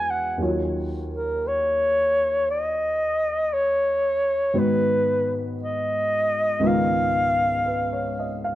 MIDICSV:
0, 0, Header, 1, 3, 480
1, 0, Start_track
1, 0, Tempo, 1036269
1, 184, Time_signature, 4, 2, 24, 8
1, 3960, End_track
2, 0, Start_track
2, 0, Title_t, "Clarinet"
2, 0, Program_c, 0, 71
2, 0, Note_on_c, 0, 80, 102
2, 48, Note_on_c, 0, 78, 69
2, 55, Note_off_c, 0, 80, 0
2, 194, Note_off_c, 0, 78, 0
2, 527, Note_on_c, 0, 70, 62
2, 682, Note_on_c, 0, 73, 77
2, 689, Note_off_c, 0, 70, 0
2, 1152, Note_off_c, 0, 73, 0
2, 1160, Note_on_c, 0, 75, 82
2, 1637, Note_on_c, 0, 73, 77
2, 1644, Note_off_c, 0, 75, 0
2, 2125, Note_on_c, 0, 71, 83
2, 2132, Note_off_c, 0, 73, 0
2, 2512, Note_off_c, 0, 71, 0
2, 2606, Note_on_c, 0, 75, 87
2, 3090, Note_on_c, 0, 77, 88
2, 3097, Note_off_c, 0, 75, 0
2, 3882, Note_off_c, 0, 77, 0
2, 3960, End_track
3, 0, Start_track
3, 0, Title_t, "Grand piano"
3, 0, Program_c, 1, 0
3, 0, Control_c, 1, 64, 127
3, 0, Note_on_c, 1, 40, 45
3, 0, Note_on_c, 1, 52, 42
3, 0, Note_on_c, 1, 56, 39
3, 0, Note_on_c, 1, 66, 41
3, 0, Note_on_c, 1, 74, 48
3, 170, Note_off_c, 1, 40, 0
3, 174, Note_on_c, 1, 39, 39
3, 177, Note_off_c, 1, 52, 0
3, 180, Note_on_c, 1, 51, 38
3, 182, Note_off_c, 1, 56, 0
3, 187, Note_on_c, 1, 54, 39
3, 189, Control_c, 1, 64, 0
3, 191, Note_off_c, 1, 66, 0
3, 192, Note_on_c, 1, 65, 40
3, 196, Note_off_c, 1, 74, 0
3, 197, Note_on_c, 1, 73, 49
3, 262, Control_c, 1, 64, 127
3, 2095, Note_off_c, 1, 51, 0
3, 2098, Note_off_c, 1, 39, 0
3, 2102, Note_on_c, 1, 44, 46
3, 2102, Note_on_c, 1, 51, 38
3, 2105, Note_off_c, 1, 54, 0
3, 2105, Note_on_c, 1, 59, 42
3, 2106, Note_on_c, 1, 66, 38
3, 2107, Note_off_c, 1, 65, 0
3, 2108, Control_c, 1, 64, 0
3, 2110, Note_off_c, 1, 73, 0
3, 2110, Note_on_c, 1, 71, 47
3, 2200, Control_c, 1, 64, 127
3, 3052, Note_off_c, 1, 44, 0
3, 3054, Note_on_c, 1, 37, 48
3, 3055, Note_off_c, 1, 51, 0
3, 3059, Note_on_c, 1, 44, 43
3, 3060, Note_off_c, 1, 59, 0
3, 3062, Note_on_c, 1, 51, 44
3, 3065, Note_off_c, 1, 66, 0
3, 3067, Note_off_c, 1, 71, 0
3, 3067, Note_on_c, 1, 59, 41
3, 3069, Control_c, 1, 64, 0
3, 3072, Note_on_c, 1, 65, 42
3, 3078, Note_on_c, 1, 70, 46
3, 3139, Control_c, 1, 64, 127
3, 3546, Note_on_c, 1, 71, 39
3, 3671, Note_on_c, 1, 73, 42
3, 3772, Note_off_c, 1, 71, 0
3, 3794, Note_on_c, 1, 75, 39
3, 3875, Note_off_c, 1, 73, 0
3, 3911, Note_on_c, 1, 77, 46
3, 3938, Note_off_c, 1, 75, 0
3, 3960, Note_off_c, 1, 37, 0
3, 3960, Note_off_c, 1, 44, 0
3, 3960, Note_off_c, 1, 51, 0
3, 3960, Note_off_c, 1, 59, 0
3, 3960, Note_off_c, 1, 65, 0
3, 3960, Note_off_c, 1, 70, 0
3, 3960, Note_off_c, 1, 77, 0
3, 3960, End_track
0, 0, End_of_file